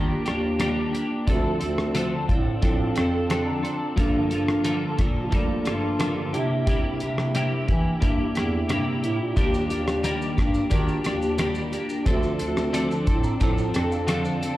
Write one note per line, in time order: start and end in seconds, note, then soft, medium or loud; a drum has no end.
0.00 0.20 D#3 medium
0.00 0.26 G3 medium
0.00 0.27 A#3 medium
0.00 1.30 A#3 medium
0.00 0.26 D4 medium
0.00 1.28 D4 medium
0.00 1.29 F4 medium
0.00 0.24 G4 medium
0.00 1.30 G4 medium
0.25 0.81 D#2 medium
0.25 0.59 A#3 soft
0.25 0.60 D4 soft
0.25 0.59 G4 medium
0.25 cross-stick medium
0.25 closed hi-hat soft
0.59 0.93 D#3 medium
0.59 0.94 G3 medium
0.59 0.94 A#3 medium
0.59 0.93 D4 medium
0.59 0.92 G4 medium
0.59 cross-stick medium
0.59 closed hi-hat medium
0.93 1.28 A#3 soft
0.93 1.27 D4 soft
0.93 1.27 G4 medium
0.93 closed hi-hat soft
1.27 1.55 D2 loud
1.27 1.61 D3 medium
1.27 1.61 F3 medium
1.27 2.11 C4 medium
1.27 1.62 C4 medium
1.27 2.11 D4 medium
1.27 1.61 D4 medium
1.27 2.12 F4 medium
1.27 1.59 A4 loud
1.27 2.12 A4 medium
1.27 kick loud
1.27 closed hi-hat medium
1.60 2.15 D2 medium
1.60 1.95 C4 soft
1.60 1.94 D4 soft
1.60 1.95 A4 medium
1.60 closed hi-hat soft
1.78 cross-stick medium
1.94 2.29 D3 medium
1.94 2.29 F3 medium
1.94 2.29 C4 medium
1.94 2.28 D4 medium
1.94 2.26 A4 loud
1.94 closed hi-hat medium
2.28 2.56 A2 medium
2.28 2.62 C4 soft
2.28 2.62 D4 soft
2.28 2.62 A4 medium
2.28 2.60 F5 medium
2.28 kick medium
2.28 closed hi-hat soft
2.62 2.90 A2 medium
2.62 2.96 F3 medium
2.62 3.46 C4 medium
2.62 2.97 C4 medium
2.62 3.46 D4 medium
2.62 2.96 D4 medium
2.62 3.46 F4 medium
2.62 3.47 A4 medium
2.62 2.94 A4 medium
2.62 2.78 G5 medium
2.62 kick medium
2.62 closed hi-hat medium
2.79 2.95 F5 medium
2.96 3.50 F2 medium
2.96 3.29 C4 medium
2.96 3.30 D4 medium
2.96 3.30 A4 medium
2.96 3.27 G5 medium
2.96 cross-stick medium
2.96 closed hi-hat soft
3.30 3.64 D3 medium
3.30 3.64 F3 medium
3.30 3.64 C4 medium
3.30 3.63 D4 medium
3.30 3.62 A4 medium
3.30 3.46 A5 medium
3.30 cross-stick medium
3.30 closed hi-hat medium
3.47 3.63 A#5 medium
3.63 3.97 C4 soft
3.63 3.98 D4 medium
3.63 3.97 A4 medium
3.63 3.95 C6 medium
3.63 closed hi-hat soft
3.96 4.31 G2 medium
3.96 4.25 G2 loud
3.96 4.31 D3 medium
3.96 4.31 F3 medium
3.96 4.80 A#3 medium
3.96 4.30 A#3 medium
3.96 4.81 D4 medium
3.96 4.81 F4 medium
3.96 4.30 F4 medium
3.96 4.29 A4 medium
3.96 4.82 A4 medium
3.96 kick loud
3.96 closed hi-hat medium
4.30 4.85 G2 medium
4.30 4.63 F3 soft
4.30 4.64 A#3 medium
4.30 4.64 F4 medium
4.30 4.64 A4 medium
4.30 closed hi-hat soft
4.48 cross-stick medium
4.64 4.98 G2 medium
4.64 4.98 D3 medium
4.64 4.98 F3 medium
4.64 4.98 A#3 medium
4.64 4.97 F4 loud
4.64 4.96 A4 medium
4.64 closed hi-hat medium
4.97 5.34 A#2 medium
4.97 5.29 F3 soft
4.97 5.31 A#3 soft
4.97 5.31 F4 medium
4.97 5.32 A4 medium
4.97 kick medium
4.97 cross-stick medium
4.97 closed hi-hat soft
5.31 5.65 F3 medium
5.31 5.60 G3 loud
5.31 5.38 A3 medium
5.31 5.66 A#3 medium
5.31 5.66 D4 medium
5.31 5.65 F4 medium
5.31 5.66 F4 medium
5.31 5.64 A4 medium
5.31 5.65 A4 medium
5.31 kick medium
5.31 closed hi-hat medium
5.38 6.18 A#3 medium
5.65 6.20 G2 medium
5.65 5.99 F3 soft
5.65 5.99 A#3 medium
5.65 5.99 F4 medium
5.65 5.99 A4 medium
5.65 5.98 A4 soft
5.65 5.98 D5 medium
5.65 cross-stick medium
5.65 closed hi-hat soft
5.99 6.33 G2 medium
5.99 6.33 D3 medium
5.99 6.34 F3 medium
5.99 6.34 A#3 medium
5.99 6.16 F4 medium
5.99 6.34 F4 medium
5.99 6.32 A4 medium
5.99 6.16 A#4 medium
5.99 cross-stick medium
5.99 closed hi-hat medium
6.16 6.32 D4 medium
6.16 6.33 G4 medium
6.32 6.88 C3 medium
6.32 7.41 A#3 medium
6.32 6.67 A#3 soft
6.32 7.41 D4 medium
6.32 7.42 E4 medium
6.32 6.67 E4 soft
6.32 6.67 G4 medium
6.32 7.42 G4 medium
6.32 closed hi-hat soft
6.67 7.01 C3 medium
6.67 7.01 G3 medium
6.67 7.01 A#3 medium
6.67 7.01 E4 medium
6.67 6.99 G4 medium
6.67 kick loud
6.67 closed hi-hat medium
7.00 7.55 C3 medium
7.00 7.35 A#3 soft
7.00 7.35 E4 soft
7.00 7.35 G4 medium
7.00 closed hi-hat soft
7.18 cross-stick medium
7.35 7.68 C3 medium
7.35 7.69 G3 medium
7.35 7.69 A#3 medium
7.35 7.68 E4 medium
7.35 7.66 G4 loud
7.35 closed hi-hat medium
7.68 7.95 E3 medium
7.68 8.01 A#3 soft
7.68 8.01 E4 medium
7.68 8.02 G4 medium
7.68 kick medium
7.68 closed hi-hat soft
8.01 8.29 G2 medium
8.01 8.35 G3 medium
8.01 8.85 A#3 medium
8.01 8.36 A#3 medium
8.01 8.85 D4 medium
8.01 8.86 E4 medium
8.01 8.36 E4 medium
8.01 8.34 G4 medium
8.01 8.86 G4 medium
8.01 kick medium
8.01 closed hi-hat medium
8.35 8.63 E2 medium
8.35 8.69 A#3 soft
8.35 8.69 E4 medium
8.35 8.69 G4 medium
8.35 cross-stick medium
8.35 closed hi-hat soft
8.69 8.83 G2 medium
8.69 9.03 C3 medium
8.69 9.03 G3 medium
8.69 9.03 A#3 medium
8.69 9.03 E4 medium
8.69 9.01 G4 medium
8.69 cross-stick medium
8.69 closed hi-hat medium
9.03 9.17 A2 medium
9.03 9.36 A#3 soft
9.03 9.37 E4 soft
9.03 9.36 G4 medium
9.03 closed hi-hat soft
9.21 9.34 A#2 medium
9.36 9.64 D#2 medium
9.36 9.70 D#3 medium
9.36 9.71 G3 medium
9.36 10.20 A#3 medium
9.36 9.71 A#3 medium
9.36 10.20 D4 medium
9.36 9.71 D4 medium
9.36 10.21 F4 medium
9.36 9.69 G4 medium
9.36 10.21 G4 medium
9.36 kick loud
9.36 closed hi-hat medium
9.36 shaker medium
9.54 shaker soft
9.70 10.11 D#2 loud
9.70 10.03 A#3 soft
9.70 10.04 D4 soft
9.70 10.04 G4 medium
9.70 closed hi-hat soft
9.70 shaker soft
9.88 cross-stick medium
9.88 shaker medium
10.03 10.37 D#3 medium
10.03 10.38 G3 medium
10.03 10.38 A#3 medium
10.03 10.37 D4 medium
10.03 10.36 G4 medium
10.03 closed hi-hat medium
10.03 shaker medium
10.22 shaker soft
10.37 10.65 G2 medium
10.37 10.69 A#3 soft
10.37 10.70 D4 soft
10.37 10.71 G4 medium
10.37 kick medium
10.37 cross-stick medium
10.37 closed hi-hat soft
10.37 shaker soft
10.54 shaker soft
10.70 10.98 D#3 medium
10.70 11.05 G3 medium
10.70 11.05 A#3 medium
10.70 11.55 A#3 medium
10.70 11.55 D4 medium
10.70 11.04 D4 medium
10.70 11.55 F4 medium
10.70 10.79 F#4 medium
10.70 11.03 G4 medium
10.70 kick medium
10.70 closed hi-hat medium
10.70 shaker medium
10.79 11.59 G4 medium
10.88 shaker soft
11.04 11.59 D#2 medium
11.04 11.38 A#3 soft
11.04 11.38 D4 soft
11.04 11.39 G4 medium
11.04 cross-stick medium
11.04 closed hi-hat soft
11.04 shaker soft
11.22 shaker soft
11.38 11.72 D#3 medium
11.38 11.73 G3 medium
11.38 11.73 A#3 medium
11.38 11.72 D4 medium
11.38 11.71 G4 loud
11.38 cross-stick loud
11.38 closed hi-hat medium
11.38 shaker medium
11.55 shaker soft
11.72 12.06 A#3 soft
11.72 12.06 D4 soft
11.72 12.06 G4 medium
11.72 closed hi-hat soft
11.72 shaker soft
11.89 shaker soft
12.05 12.33 D2 loud
12.05 12.40 D3 medium
12.05 12.40 F3 medium
12.05 12.89 C4 medium
12.05 12.40 C4 medium
12.05 12.90 D4 medium
12.05 12.39 D4 medium
12.05 12.90 F4 medium
12.05 12.37 A4 medium
12.05 12.90 A4 medium
12.05 kick loud
12.05 closed hi-hat medium
12.05 shaker medium
12.23 shaker soft
12.39 12.94 D2 medium
12.39 12.72 C4 soft
12.39 12.73 D4 soft
12.39 12.73 A4 medium
12.39 closed hi-hat soft
12.39 shaker soft
12.57 cross-stick medium
12.57 shaker medium
12.73 13.07 D3 medium
12.73 13.07 F3 medium
12.73 13.07 C4 loud
12.73 13.07 D4 medium
12.73 13.05 A4 medium
12.73 closed hi-hat medium
12.73 shaker medium
12.91 shaker medium
13.07 13.34 A2 medium
13.07 13.40 C4 soft
13.07 13.41 D4 soft
13.07 13.41 A4 medium
13.07 13.23 C6 medium
13.07 kick medium
13.07 closed hi-hat soft
13.07 shaker soft
13.24 13.40 A#5 medium
13.24 shaker soft
13.40 13.68 A2 medium
13.40 13.75 F3 medium
13.40 14.24 C4 medium
13.40 13.75 C4 medium
13.40 14.25 D4 medium
13.40 13.74 D4 medium
13.40 14.25 F4 medium
13.40 14.25 A4 medium
13.40 13.73 A4 medium
13.40 13.73 A5 medium
13.40 kick medium
13.40 closed hi-hat medium
13.40 shaker medium
13.58 shaker soft
13.74 14.28 F2 medium
13.74 14.07 C4 soft
13.74 14.07 D4 medium
13.74 14.07 A4 medium
13.74 13.91 G5 medium
13.74 cross-stick medium
13.74 closed hi-hat medium
13.74 shaker soft
13.92 14.07 F5 medium
13.92 shaker soft
14.07 14.42 D3 medium
14.07 14.42 F3 medium
14.07 14.42 C4 medium
14.07 14.41 D4 medium
14.07 14.40 A4 medium
14.07 14.40 F5 medium
14.07 cross-stick loud
14.07 closed hi-hat medium
14.07 shaker medium
14.25 shaker soft
14.41 14.57 C4 soft
14.41 14.57 D4 soft
14.41 14.57 A4 medium
14.41 14.57 D5 medium
14.41 closed hi-hat soft
14.41 shaker soft